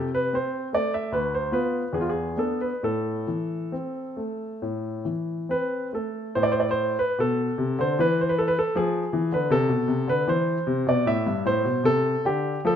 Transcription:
Already playing: C3
0.15 B4
0.33 C4 C5
0.73 A3 D5
0.94 E5
1.12 D2 B4
1.35 C5
1.52 B3 F4 B4
1.93 E2 G#4
2.01 F4
2.09 G#4
2.37 B3 D4 A4
2.61 B4
2.83 A2 A4
3.27 E3
3.72 C4
4.17 A3
4.62 A2
5.05 E3
5.49 C4 B4
5.93 A3 A4
6.35 A2 C5
6.43 D5
6.52 C5
6.60 D5
6.71 C5
6.99 B4
7.19 B2 A4
7.58 C3
7.79 D3 C5
7.99 E3 B4
8.21 C5
8.29 B4
8.38 A4
8.48 B4
8.59 A4
8.75 F3 G#4
9.13 E3
9.32 D3 B4
9.50 C3 A4
9.69 B2
9.88 C3
10.07 D3 B4
10.28 E3 C5
10.67 C3
10.87 B2 D5
11.06 A2 E5
11.26 G2
11.45 A2 C5
11.65 B2
11.83 C3 A4
12.25 D3 G4
12.65 F3 A4

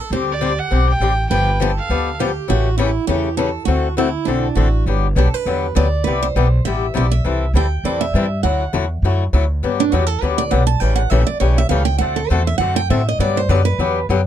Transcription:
0.00 A4
0.10 D2 D3 G3 C4 D4 G4
0.32 D5
0.41 D3 G3 C4 D4 G4
0.59 F#5
0.71 B1 D3 G3 C4 D4 G4
0.90 G5
1.00 A1 D3 G3 C4 D4 G4
1.30 G1 D3 F3 B3 D4 G4 B4 G5
1.60 D3 F3 B3 D4 G4 A4
1.78 F5
1.89 D2 D3 F3 B3 D4 G4
2.19 D3 F3 B3 D4 G4
2.48 A1 C#3 E3 A3 C#4 F#4 G4
2.78 C#3 E3 A3 C#4 E4 G4
3.07 E2 C#3 E3 A3 C#4 G4
3.37 C#3 E3 A3 C#4 G4 A4
3.65 D2 D3 A3 C4 F#4 A4
3.97 D3 A3 C4 E4 F#4 A4
4.25 B1 D3 A3 C4 D4 F#4 A4
4.55 A1 D3 A3 C4 F#4 A4
4.86 G1 D3 F#3 B3 D4 G4
5.16 B1 D3 F#3 B3 D4 G4 A4
5.34 B4
5.46 E2 D3 F#3 B3 D4 G4
5.75 D2 D3 F#3 B3 D4 G4 D5
6.04 C2 C3 G3 B3 E4 G4 B4
6.23 C5
6.36 B1 C3 G3 B3 E4 G4
6.65 A1 C3 G3 B3 E4 G4 E5
6.94 B1 C3 G3 B3 E4 G4 D5
7.11 E5
7.24 C2 E3 G3 C4 E4 A4
7.54 D2 E3 G3 C4 E4 A4 G5
7.84 E2 E3 G3 C4 E4 A4 D5
8.01 E5
8.14 G2 E3 G3 C4 E4 A4
8.43 D2 D3 F#3 A3 E4 F#4 F#5
8.73 E2 D3 F#3 A3 E4 F#4
9.02 F#2 D3 F#3 A3 E4 F#4
9.33 D2 D3 F#3 A3 E4 F#4
9.63 G2 D3 F#3 B3 D4 G4
9.80 D4
9.92 E2 D3 F#3 B3 D4 F#4 G4
10.07 A4
10.21 D2 D3 F#3 B3 D4 G4 B4
10.38 D5
10.51 B1 D3 F#3 B3 D4 G4 F#5
10.67 A5
10.80 A1 C#3 E3 A3 C#4 G4 G5
10.96 F#5
11.10 A#1 C#3 E3 A3 C#4 G4 E5
11.27 D5, muted upright bass stroke
11.40 B1 C#3 E3 A3 C#4 G4 C#5
11.58 E5
11.69 C#2 C#3 E3 A3 C#4 G4 F5
11.85 G5
11.98 D2 D3 A3 C4 F#4 A4 F#5
12.16 A4
12.28 E2 D3 A3 C4 F#4 A4 C5
12.47 E5
12.58 F#2 D3 A3 C4 F#4 A4 F#5
12.76 G5
12.90 A2 D3 A3 C4 F#4 A4 E5
13.09 D#5
13.19 G2 D3 F#3 B3 D4 G4 D5
13.37 C5
13.49 F#2 D3 F#3 B3 D4 G4 B4
13.65 B4
13.78 E2 D3 F#3 B3 D4 G4
14.09 F#2 D3 F#3 B3 D4 G4

